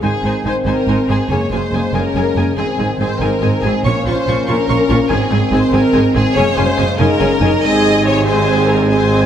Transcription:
0.00 G#1 G#2 D#3 C4 D#4 G#4 C5 G#5
0.23 G#1 G#2 D#4 C5 G#5
0.44 G#1 G#2 D#4 C5 G#5
0.65 G#1 G#2 D#4 A#4 C5 G#5
0.87 G#1 G#2 D#4 C5 G#5
1.08 G#1 G#2 D#4 G#4 C5 G#5
1.29 F#1 F#2 C#3 G#3 A#3 G#4 C#5 G#5
1.50 F#1 F#2 A#3 G#4 C5 G#5
1.71 F#1 F#2 A#3 G#4 G#5
1.93 F#1 F#2 A#3 C#4 G#4 A#4 G#5
2.15 F#1 F#2 A#3 G#4 G#5
2.35 F#1 F#2 A#3 G#4 G#5
2.57 G#1 G#2 D#3 C4 G#4 G#5
2.78 G#1 G#2 C4 G#4 G#5
2.99 G#1 G#2 C4 G#4 C5 G#5
3.19 G#1 G#2 C4 G#4 A#4 G#5
3.41 G#1 G#2 C4 G#4 G#5
3.62 G#1 G#2 C4 G#4 G#5
3.84 A#1 A#2 F3 A#3 C#4 F4 C#5 C#6
4.05 A#1 A#2 A#3 F4 C5 C#6
4.26 A#1 A#2 A#3 F4 C#6
4.47 A#1 A#2 A#3 C#4 F4 A#4 C#6
4.67 A#1 A#2 A#3 F4 C#6
4.89 A#1 A#2 A#3 F4 C#6
5.09 G#1 G#2 D#3 C4 G#4 G#5
5.31 G#1 G#2 C4 G#4 G#5
5.52 G#1 G#2 C4 G#4 C5 G#5
5.72 G#1 G#2 C4 G#4 A#4 G#5
5.93 G#1 G#2 C4 G#4 G#5
6.14 G#1 G#2 C4 G#4 G#5
6.35 F#1 F#2 C#3 G#3 C#4 G#4 C#5 G#5
6.56 F#1 F#2 C#4 G#4 C5 G#5
6.76 F#1 F#2 C#4 G#4 G#5
6.97 F#1 F#2 C#4 D#4 G#4 A#4 G#5
7.20 F#1 F#2 C#4 G#4 G#5
7.40 F#1 F#2 C#4 D#4 G#4 G#5
7.61 G#1 G#2 C3 G#3 C4 G#4 D#5 G#5
8.05 C#5
8.25 C4 D#4 G#4 C5 G#5
8.68 A#4
8.88 C4 G#4 C5 G#5

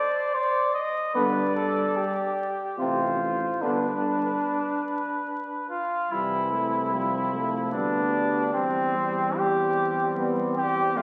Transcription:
Already playing: C5 D5
0.34 C5 D5
0.74 D#5
1.15 G2 D3 B3 B4 D5
1.56 A4
1.97 G4
2.78 A1 C3 C4 F4 C5
3.61 G1 D3 B3 D4 B4
5.69 F4
6.11 C2 E3 G3 C4 E4
6.53 A3
6.93 F3 G3
7.33 A3
7.73 D2 G3 B3 D4
8.53 E2 G3 C4
8.96 G3
9.37 G3 C4 G4
10.17 B3
10.57 C4 G4
10.96 F2 A3 C4 F4

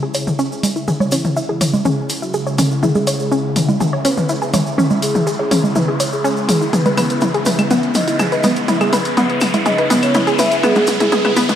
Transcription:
Already playing: C#3 G#3 E4, riser
0.03 G#4
0.14 G#4 C#5, open hi-hat, shaker
0.27 mid tom, shaker
0.39 C#4, shaker
0.51 G#4, shaker
0.63 open hi-hat, low conga, shaker
0.76 E4, shaker
0.88 G#4, mid tom, shaker
1.00 C#5, low conga, shaker
1.11 C#4 E4, open hi-hat, shaker
1.25 mid tom, shaker
1.37 E4, shaker
1.49 E4 G#4
1.61 C#5, open hi-hat, mid tom, shaker
1.73 low conga, shaker
1.85 C#4 G#4, mid tom, shaker
2.10 open hi-hat, shaker
2.22 E4 F#4, shaker
2.34 G#4, shaker
2.47 C#5, shaker
2.58 C#4 A4, open hi-hat, mid tom, shaker
2.71 shaker
2.83 E4 G#4, mid tom, shaker
2.95 G#4, low conga, shaker
3.07 C#5, open hi-hat, shaker
3.20 G#4, shaker
3.32 C#4, shaker
3.56 open hi-hat, mid tom, shaker
3.69 E4, low conga, shaker
3.80 G#4, mid tom, shaker
3.93 C#5
4.05 C#4 B4, open hi-hat, shaker
4.17 mid tom, shaker
4.29 E4, shaker
4.42 G#4 B4, shaker
4.53 C#5, open hi-hat, mid tom, low conga, shaker
4.66 shaker
4.78 C#4, mid tom, shaker
4.90 low conga, shaker
5.02 G#4, open hi-hat, shaker
5.15 E4, mid tom, shaker
5.27 G#4, shaker
5.39 G#4 C#5
5.51 C#4, open hi-hat, mid tom, shaker
5.64 low conga, shaker
5.75 E4 B4, mid tom, shaker
5.88 G#4
6.00 C#5, open hi-hat, shaker
6.12 G#4, shaker
6.24 C#4, shaker
6.37 shaker
6.49 G#4, open hi-hat, mid tom, shaker
6.61 E4, shaker
6.73 C#3 B3 G#4 B4, closed hi-hat, mid tom, shaker
6.86 B4, closed hi-hat, low conga, shaker
6.97 B3, open hi-hat, mid tom, claves, shaker
7.10 B4, closed hi-hat, shaker
7.21 E4, closed hi-hat, mid tom, shaker
7.34 G#4, closed hi-hat
7.46 B4, open hi-hat, mid tom, shaker
7.59 closed hi-hat, low conga, claves, shaker
7.71 B3, closed hi-hat, mid tom, shaker
7.83 closed hi-hat
7.94 D#5, open hi-hat, mid tom, shaker
8.08 E4, closed hi-hat, shaker
8.19 G#4, closed hi-hat, mid tom, claves, shaker
8.32 B4 D#5, closed hi-hat, shaker
8.44 B3, open hi-hat, mid tom, low conga, shaker
8.56 closed hi-hat, shaker
8.68 E4, closed hi-hat, mid tom, shaker
8.81 G#4, closed hi-hat, low conga, claves, shaker
8.93 B4, open hi-hat, mid tom, shaker
9.05 closed hi-hat, shaker
9.17 B3, closed hi-hat, mid tom, shaker
9.30 B4, closed hi-hat
9.41 open hi-hat, mid tom, claves, shaker
9.54 E4, closed hi-hat, low conga, shaker
9.66 G#4 D#5, closed hi-hat, mid tom, shaker
9.78 B4, closed hi-hat
9.90 B3, open hi-hat, mid tom, shaker
10.03 C#5, closed hi-hat, claves, shaker
10.14 E4, closed hi-hat, mid tom, shaker
10.27 G#4, closed hi-hat, shaker
10.39 B4 E5, open hi-hat, mid tom, shaker
10.52 closed hi-hat, shaker
10.63 B3 G#4, closed hi-hat, mid tom, claves, shaker
10.75 closed hi-hat, mid tom, low conga, shaker
10.87 open hi-hat, mid tom, shaker
11.00 E4 G#4, closed hi-hat, mid tom, shaker
11.12 G#4, closed hi-hat, mid tom, shaker
11.25 B4, closed hi-hat, mid tom, claves
11.36 B3, open hi-hat, mid tom, shaker
11.49 closed hi-hat, mid tom, low conga, shaker

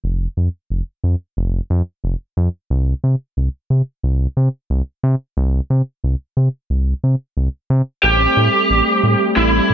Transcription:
0.04 F1
0.37 F2
0.70 F1
1.04 F2
1.37 F1
1.70 F2
2.04 F1
2.37 F2
2.70 C2
3.04 C3
3.37 C2
3.70 C3
4.03 C2
4.37 C3
4.70 C2
5.03 C3
5.37 C2
5.70 C3
6.04 C2
6.37 C3
6.70 C2
7.04 C3
7.37 C2
7.70 C3
8.03 A1 G3 A3 C4 G4
8.37 A2
8.70 A1
9.03 A2
9.37 A1 E4
9.70 A2

